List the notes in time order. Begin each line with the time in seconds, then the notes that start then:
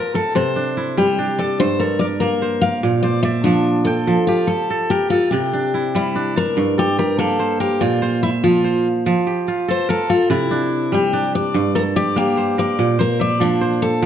Already playing: F3 G4 A4 A#4
0.14 A4
0.35 C3 C5
0.56 D4
0.77 E4
0.97 G3 G4
1.18 D4
1.39 A4 D5
1.60 G2 C5
1.79 A4 A#4
1.99 A#4 D5
2.20 A#3 A#4
2.42 C5
2.62 A#4 F5
2.83 A#2
3.03 C5 D5
3.23 D5 E5
3.44 F3 D4
3.85 A4 G5
4.07 F3
4.27 F4 G4
4.47 A4
4.70 A4
4.90 G4 A#4
5.10 F4 A4
5.31 C3 G4
5.53 D4
5.74 E4
5.95 G3 E4
6.16 D4
6.36 A#4 A5
6.57 G2, shaker
6.78 G4 A4, shaker
6.89 shaker
6.98 G4 A#4, shaker
7.09 shaker
7.18 A#3 A4
7.30 shaker
7.39 C5, shaker
7.60 G4 A#4, shaker
7.71 shaker
7.81 A#2 F4
7.92 shaker
8.02 C5, shaker
8.23 E4 E5
8.33 shaker
8.44 F3 F4, shaker
8.64 C5
8.75 shaker
9.06 F3, shaker
9.27 G4, shaker
9.37 shaker
9.47 F4, shaker
9.57 shaker
9.68 A4 C5
9.78 shaker
9.89 A4 A#4, shaker
10.10 F4 A4, shaker
10.21 shaker
10.30 C3 E4
10.42 shaker
10.51 D4, shaker
10.82 shaker
10.92 G3 G4, shaker
11.03 shaker
11.13 D4
11.23 shaker
11.35 D5
11.54 G2, shaker
11.75 A4 A#4, shaker
11.86 shaker
11.96 G4 D5, shaker
12.07 shaker
12.16 A#3 G4
12.28 shaker
12.37 C5
12.58 A#4 D5, shaker
12.79 A#2
12.89 shaker
12.99 A#4 C5, shaker
13.20 D5 E5
13.30 shaker
13.40 F3 D4, shaker
13.52 shaker
13.61 C5
13.72 shaker
13.82 A4
14.02 F3